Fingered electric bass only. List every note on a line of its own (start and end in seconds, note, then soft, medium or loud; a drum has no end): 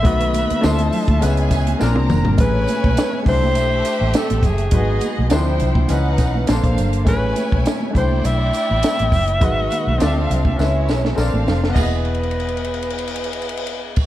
0.05 0.44 B1 loud
0.51 muted fingered electric bass stroke medium
0.64 0.89 D2 loud
1.09 1.20 D2 medium
1.23 1.73 C#2 loud
1.82 1.97 A#1 loud
1.97 2.08 C2 medium
2.11 2.24 F1 medium
2.27 2.38 G1 loud
2.39 2.64 A1 loud
2.85 2.96 B1 medium
3.27 3.56 C2 medium
3.56 3.81 B1 medium
4.01 4.13 A1 medium
4.31 4.42 A1 medium
4.43 4.69 F#1 medium
4.72 4.98 G#1 medium
5.19 5.30 B1 medium
5.32 5.62 D2 loud
5.61 5.86 C2 medium
5.90 6.19 C#2 loud
6.19 6.45 B1 medium
6.49 6.63 A#1 loud
6.64 6.76 A#1 medium
6.79 7.07 G1 medium
7.07 7.33 A1 loud
7.53 7.64 B1 medium
7.96 8.21 C2 medium
8.25 8.50 B1 medium
8.71 8.82 A1 medium
9.00 9.11 A1 medium
9.12 9.42 F#1 medium
9.42 9.67 G#1 medium
9.87 9.98 B1 medium
10.01 10.26 D2 medium
10.30 10.55 C2 medium
10.59 10.89 C#2 loud
10.89 11.14 B1 medium
11.18 11.31 A#1 loud
11.34 11.45 A1 medium
11.47 11.72 F1 medium
11.76 14.04 E1 medium